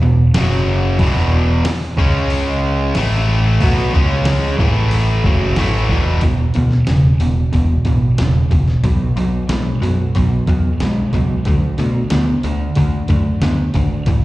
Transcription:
0.03 E1 E2 B2
0.34 F#1 F#2 C#3 F#3, snare, open hi-hat
0.99 E1 E2 B2 E3, kick, open hi-hat
1.16 snare
1.65 muted distorted electric guitar stroke, muted overdriven electric guitar stroke, snare, open hi-hat
1.97 C#2 C#3 G#3 C#4, kick
2.30 open hi-hat
2.95 A1 A2 E3 A3, snare, open hi-hat
3.61 B1 B2 F#3 B3, kick, open hi-hat
3.93 C#2 C#3 G#3 C#4, kick
4.25 snare, open hi-hat
4.59 A1 A2 E3 A3, kick
4.91 open hi-hat
5.24 F#1 F#2 C#3 F#3, kick
5.56 A1 A2 E3 A3, snare, open hi-hat
5.89 E1 E2 B2 E3, kick
6.21 E1 E2 B2, kick, open hi-hat
6.54 D2 E2 B2, open hi-hat
6.71 snare
6.87 E1 E2 C#3, snare, open hi-hat
7.20 E1 E2 B2, open hi-hat
7.53 E1 E2 B2, kick, open hi-hat
7.85 A1 E2 B2, kick, open hi-hat
8.18 E1 E2 C#3, snare, open hi-hat
8.51 E1 E2 B2, kick, open hi-hat
8.68 snare
8.84 B1 B2 F#3, kick, open hi-hat
9.16 B1 B2 F#3, open hi-hat
9.49 B1 B2 G#3, snare, open hi-hat
9.81 F#2 B2 F#3, open hi-hat
10.15 B1 B2 F#3, kick, open hi-hat
10.47 E2 B2 F#3, kick, open hi-hat
10.80 B1 B2 G#3, snare, open hi-hat
11.13 C#2 B2 F#3, kick, open hi-hat
11.45 D2 D3 A3, kick, open hi-hat
11.78 B2 D3 A3, open hi-hat
12.10 D2 D3 B3, snare, open hi-hat
12.43 D2 D3 A3, open hi-hat
12.75 D2 D3 A3, kick, open hi-hat
13.08 F#2 D3 A3, kick, open hi-hat
13.42 D2 D3 B3, snare, open hi-hat
13.74 G#1 D3 A3, kick, open hi-hat
14.06 A1 A2 E3, kick, open hi-hat

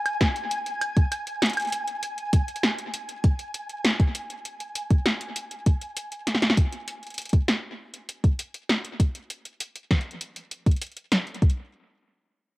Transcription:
Already playing: G#5
0.06 closed hi-hat, high woodblock
0.21 kick, snare
0.36 closed hi-hat
0.51 closed hi-hat
0.66 closed hi-hat
0.81 closed hi-hat, high woodblock
0.97 kick, closed hi-hat
1.12 closed hi-hat, high woodblock
1.27 closed hi-hat
1.42 snare, closed hi-hat
1.46 closed hi-hat
1.50 closed hi-hat
1.53 closed hi-hat
1.57 closed hi-hat, high woodblock
1.60 closed hi-hat
1.62 closed hi-hat
1.65 closed hi-hat
1.67 closed hi-hat
1.70 closed hi-hat
1.72 closed hi-hat
1.87 closed hi-hat
2.03 closed hi-hat
2.18 closed hi-hat
2.33 kick, closed hi-hat
2.48 closed hi-hat
2.56 closed hi-hat
2.63 snare
2.78 closed hi-hat
2.94 closed hi-hat
3.09 closed hi-hat
3.24 kick, closed hi-hat
3.39 closed hi-hat
3.54 closed hi-hat
3.69 closed hi-hat
3.85 snare, closed hi-hat
4.00 kick, closed hi-hat
4.15 closed hi-hat
4.30 closed hi-hat
4.45 closed hi-hat
4.60 closed hi-hat
4.75 closed hi-hat
4.91 kick, closed hi-hat
5.06 snare, closed hi-hat
5.21 closed hi-hat
5.36 closed hi-hat
5.51 closed hi-hat
5.66 kick, closed hi-hat
5.81 closed hi-hat
5.97 closed hi-hat
6.12 closed hi-hat
6.27 snare, closed hi-hat
6.35 snare
6.42 snare, closed hi-hat
6.50 snare
6.57 kick, closed hi-hat
6.72 closed hi-hat
6.88 closed hi-hat
7.03 closed hi-hat
7.07 closed hi-hat
7.10 closed hi-hat
7.14 closed hi-hat
7.18 closed hi-hat
7.22 closed hi-hat
7.25 closed hi-hat
7.29 closed hi-hat
7.33 kick, closed hi-hat
7.48 snare, closed hi-hat
7.94 closed hi-hat
8.09 closed hi-hat
8.24 kick, closed hi-hat
8.39 closed hi-hat
8.54 closed hi-hat
8.69 snare
8.85 closed hi-hat
9.00 kick, closed hi-hat
9.15 closed hi-hat
9.30 closed hi-hat
9.45 closed hi-hat
9.60 closed hi-hat
9.75 closed hi-hat
9.91 kick, snare, closed hi-hat
10.01 closed hi-hat
10.11 closed hi-hat
10.21 closed hi-hat
10.36 closed hi-hat
10.51 closed hi-hat
10.66 kick, closed hi-hat
10.71 closed hi-hat
10.76 closed hi-hat
10.81 closed hi-hat
10.92 closed hi-hat
10.97 closed hi-hat
11.12 snare, closed hi-hat
11.27 closed hi-hat
11.34 closed hi-hat
11.42 kick, closed hi-hat
11.50 closed hi-hat

